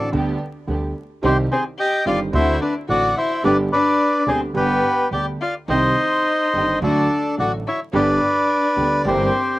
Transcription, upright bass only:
0.13 0.36 D2 loud
0.68 0.91 D2 medium
1.23 1.46 C2 loud
2.05 2.29 G1 medium
2.33 2.57 D2 loud
2.88 3.12 A1 medium
3.44 3.67 G1 loud
4.27 4.51 D2 medium
4.55 4.79 G1 loud
5.12 5.36 D2 medium
5.68 5.92 C2 loud
6.54 6.78 G1 medium
6.82 7.06 D2 loud
7.39 7.62 A1 medium
7.93 8.17 G1 loud
8.76 9.00 D2 medium
9.04 9.28 G1 loud

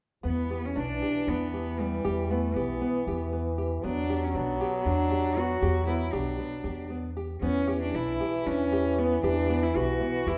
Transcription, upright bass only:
0.24 0.72 E2 medium
0.77 1.00 B1 medium
1.27 2.01 E2 medium
2.05 2.52 E2 medium
2.56 2.79 B1 medium
3.07 3.80 E2 medium
3.84 4.31 E2 medium
4.35 4.58 B1 medium
4.85 5.58 E2 medium
5.62 6.09 E2 medium
6.13 6.37 B1 medium
6.64 7.38 E2 medium
7.42 7.90 E2 medium
7.94 8.17 B1 medium
8.46 9.19 E2 medium
9.23 9.71 E2 medium
9.75 9.98 B1 medium
10.26 10.38 E2 medium

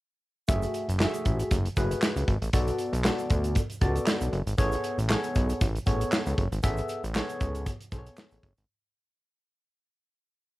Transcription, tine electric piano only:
0.48 0.86 A3 medium
0.48 0.87 F#4 medium
0.48 0.87 G#4 medium
0.48 0.87 E5 medium
0.99 1.06 G#3 medium
0.99 1.55 F#4 medium
0.99 1.56 G#4 medium
0.99 1.56 E5 medium
1.05 1.58 A3 medium
1.77 2.32 A3 medium
1.77 2.32 F#4 medium
1.77 2.33 G#4 medium
1.77 2.33 B4 medium
2.53 2.92 B3 medium
2.53 2.92 F#4 medium
2.53 2.92 A4 medium
2.53 2.92 D5 medium
3.04 3.60 B3 medium
3.04 3.60 F#4 medium
3.04 3.60 A4 medium
3.04 3.61 D5 medium
3.81 4.37 B3 medium
3.81 4.37 F#4 medium
3.81 4.38 A4 medium
3.81 4.38 D5 medium
4.58 4.96 B3 medium
4.58 4.97 G#4 medium
4.58 4.97 A4 medium
4.58 4.97 C#5 medium
5.09 5.65 B3 medium
5.09 5.65 G#4 medium
5.09 5.65 A4 medium
5.09 5.66 C#5 medium
5.86 6.42 B3 medium
5.86 6.43 G#4 medium
5.86 6.43 A4 medium
5.86 6.43 C#5 medium
6.63 7.02 B3 medium
6.63 7.02 G#4 medium
6.63 7.02 A4 medium
6.63 7.02 E5 medium
7.15 7.71 B3 medium
7.15 7.71 G#4 medium
7.15 7.71 A4 medium
7.15 7.71 C#5 medium
7.92 8.48 B3 medium
7.92 8.48 G#4 medium
7.92 8.48 A4 medium
7.92 7.99 C5 medium
7.99 8.51 C#5 medium

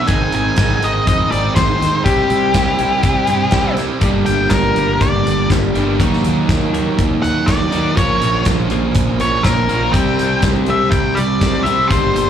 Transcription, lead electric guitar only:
0.07 0.33 G#5 loud
0.35 0.85 G#5 loud
0.84 1.06 D#5 medium
1.08 1.31 D#5 medium
1.32 1.55 D5 medium
1.55 2.02 C5 medium
2.05 3.74 G4 medium
4.26 4.52 G5 medium
4.50 5.02 A#4 medium
5.01 5.47 D5 medium
7.22 7.48 F#5 loud
7.46 7.97 D5 medium
7.97 8.43 C#5 medium
9.21 9.46 C#5 medium
9.43 9.95 A#4 medium
9.93 10.40 G5 loud
10.70 10.90 E5 medium
10.91 11.17 G5 loud
11.15 11.67 D5 medium
11.63 11.91 E5 medium
11.87 12.30 C5 medium

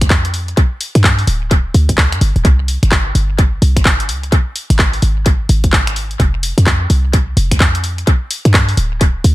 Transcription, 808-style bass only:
0.02 0.54 F2 medium
0.95 1.25 G2 loud
1.27 1.72 D1 medium
1.74 2.14 D2 loud
2.12 2.20 G2 medium
2.21 2.33 G1 loud
2.36 2.43 D1 loud
2.45 2.78 C2 medium
2.83 3.12 G1 loud
3.15 3.59 G1 medium
3.62 3.78 C2 medium
3.77 4.10 G1 medium
4.09 4.42 C#2 medium
4.70 5.00 G#1 medium
5.03 5.47 G#1 medium
5.49 6.17 G#1 loud
6.20 6.53 F1 loud
6.58 6.87 F2 medium
6.90 7.34 C2 medium
7.37 7.53 F1 medium
7.51 8.04 F2 medium
8.45 8.75 G2 loud
8.77 9.22 D1 medium
9.24 9.35 D2 loud

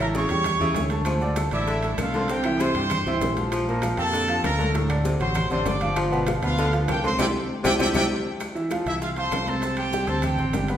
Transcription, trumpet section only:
0.00 0.07 A#4 medium
0.00 0.07 A#5 medium
0.16 0.88 C#5 loud
0.16 0.88 C#6 medium
1.52 1.96 E4 medium
1.52 1.96 E5 medium
1.98 2.29 F4 medium
1.98 2.30 F5 medium
2.29 2.60 G4 loud
2.29 2.61 G5 medium
2.58 3.36 C5 loud
2.58 3.37 C6 medium
3.98 4.41 A4 loud
3.98 4.41 A5 medium
4.43 4.72 A#4 loud
4.43 4.72 A#5 medium
5.20 5.49 C5 medium
5.20 5.49 C6 medium
5.50 5.65 C5 medium
5.50 5.65 C6 medium
5.65 5.96 D5 medium
5.65 5.97 D6 medium
6.43 6.71 F4 loud
6.43 6.71 F5 medium
6.90 7.03 G4 medium
6.90 7.03 G5 medium
7.04 7.18 C5 loud
7.04 7.18 C6 medium
7.19 7.26 D5 medium
7.19 7.26 E5 loud
7.19 7.26 G5 loud
7.65 7.72 D5 loud
7.65 7.72 E5 loud
7.65 7.72 G5 loud
7.80 7.87 D5 loud
7.80 7.87 E5 medium
7.80 7.87 G5 loud
7.95 8.03 D5 loud
7.95 8.03 E5 medium
7.95 8.03 G5 loud
8.86 8.93 E4 medium
8.86 8.94 E5 medium
9.01 9.08 F4 medium
9.01 9.09 F5 medium
9.17 9.45 C5 loud
9.17 9.46 C6 medium
9.48 9.78 A4 medium
9.48 9.79 A5 medium
9.78 10.06 G4 loud
9.78 10.06 G5 medium
10.08 10.23 A4 medium
10.08 10.23 A5 medium
10.25 10.66 G4 medium
10.25 10.66 G5 medium

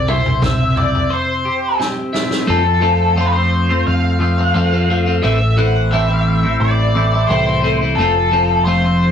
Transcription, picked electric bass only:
0.00 1.08 C2 loud
2.50 3.83 F2 medium
3.87 4.52 F2 medium
4.55 5.20 F2 medium
5.24 6.57 A1 medium
6.60 7.25 A1 medium
7.30 7.94 C2 medium
7.97 9.12 F1 medium

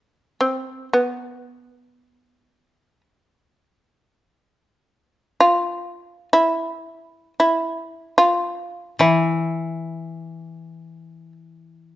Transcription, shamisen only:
0.00 0.38 E4 medium
0.41 0.88 C4 medium
0.93 3.01 B3 medium
5.40 6.29 F4 medium
6.33 7.33 E4 medium
7.40 8.15 E4 medium
8.18 8.96 F4 medium
9.01 10.13 E4 medium
10.13 10.27 D#4 medium
10.27 10.42 D4 medium
10.42 10.56 C#4 medium
10.56 11.32 C4 medium

